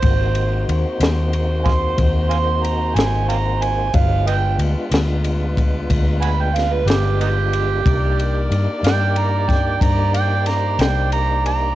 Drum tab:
RD |xxxxxxxxxxxx|xxxxxxxxxxxx|xxxxxxxxxxxx|
SD |---o-o---o--|---o----oo--|---o-o--oo--|
BD |o----oo-----|o----oo-----|o----oo-----|